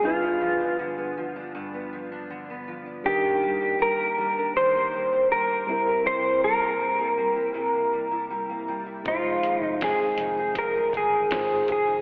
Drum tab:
HH |--------|--------|--------|xxxxxxxx|
SD |--------|--------|--------|--o---o-|
BD |--------|--------|--------|o---oo-o|